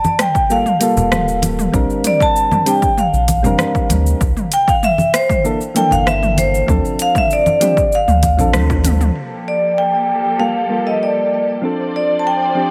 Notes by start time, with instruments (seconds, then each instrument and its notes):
Already playing: vibraphone A5
0.04 high conga, cabasa
0.19 vibraphone G5, cross-stick, closed hi-hat, mid tom, cabasa
0.35 kick, cabasa
0.50 synth keys G3 A#3 F4 A4, vibraphone F5, cabasa
0.66 mid tom, cabasa
0.80 synth keys G3 A#3 F4 A4, closed hi-hat, cabasa
0.96 sub bass D1, low conga, cabasa
1.12 cross-stick, mid tom, high conga, cabasa
1.28 cabasa
1.42 closed hi-hat, high conga, cabasa
1.59 mid tom, cabasa
1.72 sub bass A#1, synth keys G3 C4 D4 A#4, kick, cabasa
1.90 cabasa
2.04 vibraphone D5, closed hi-hat, mid tom, cabasa
2.20 vibraphone A5, kick, cabasa
2.36 cabasa
2.51 mid tom, high conga, cabasa
2.66 synth keys G3 C4 D4 G4, vibraphone G5, closed hi-hat, cabasa
2.82 kick, cabasa
2.98 vibraphone F5, mid tom, cabasa
3.13 sub bass A#1, cabasa
3.28 kick, closed hi-hat, high conga, cabasa
3.43 sub bass F1, synth keys G3 C4 D4 A#4, mid tom, low conga, cabasa
3.58 cross-stick, high conga, cabasa
3.75 kick, cabasa
3.90 sub bass D2, closed hi-hat, mid tom, high conga, cabasa
4.06 cabasa
4.21 sub bass C2, kick, cabasa
4.37 mid tom, cabasa
4.52 vibraphone G5, closed hi-hat, cabasa
4.68 vibraphone F5, kick, cabasa
4.83 vibraphone E5, mid tom, cabasa
4.98 high conga, cabasa
5.14 vibraphone C5, cross-stick, closed hi-hat, cabasa
5.29 kick, mid tom, cabasa
5.44 synth keys E3 A#3 D4 A4, cabasa
5.61 cabasa
5.74 synth keys E3 A#3 D4 A4, vibraphone G5, closed hi-hat, mid tom, cabasa
5.91 sub bass G1, vibraphone F5, low conga, cabasa
6.06 vibraphone E5, cross-stick, high conga, cabasa
6.23 mid tom, cabasa
6.37 vibraphone C5, closed hi-hat, high conga, cabasa
6.55 cabasa
6.67 sub bass D2, synth keys F3 C4 D4 A4, kick, mid tom, cabasa
6.85 cabasa
6.99 vibraphone F5, closed hi-hat, cabasa
7.15 vibraphone E5, kick, mid tom, cabasa
7.31 vibraphone D5, cabasa
7.46 high conga, cabasa
7.60 synth keys F3 C4 D4 G4, closed hi-hat, mid tom, cabasa
7.77 kick, cabasa
7.92 vibraphone F5, cabasa
8.08 sub bass D2, mid tom, cabasa
8.23 kick, closed hi-hat, high conga, cabasa
8.37 sub bass A1, synth keys F3 C4 D4 A4, low conga, cabasa
8.53 sub bass D2, cross-stick, mid tom, high conga, cabasa
8.70 kick, high tom, cabasa
8.84 closed hi-hat, mid tom, high conga, cabasa
9.01 mid tom, cabasa
9.15 string section F3 A#3 G4 A4, crash
9.48 vibraphone D5
9.78 vibraphone G5
10.39 synth keys G3 A#3 F4 A4, vibraphone F5
10.69 synth keys G3 A#3 F4 A4
10.87 vibraphone D#5
11.03 vibraphone D5
11.61 synth keys F3 C4 D4 A4, string section F3 C5 D5
11.96 vibraphone D5
12.19 vibraphone A5
12.27 vibraphone G5
12.55 synth keys F3 C4 D4 G4